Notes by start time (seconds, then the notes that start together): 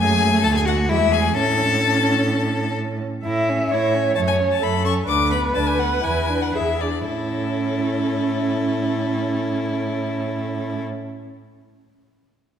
Already playing: F#2 A3
0.00 G#4 G#5
0.43 D2 A4 A5
0.54 G#4 G#5
0.65 F#4 F#5
0.89 E2 G#3 E4 E5
1.12 G#4 G#5
1.36 A2 C#4 A4 A5
3.24 A2 E4 E5
3.49 C#4
3.70 A2 E4 C#5 E5
3.94 C#4
4.15 F#2 A3 C#5 A5
4.27 G#5
4.40 C#4
4.51 A5
4.62 F#2 A3 A4 B5
4.85 C#4 C#6
5.07 D2 D4 B4 D6
5.32 B3 B5
5.54 D2 D4 A5
5.67 G#5
5.79 B3 F#5
6.02 E2 E4 G#5
6.29 D4
6.42 F#5
6.54 E2 E4 G#4 E5
6.80 D4 D5
7.06 A2 C#4 E4 A4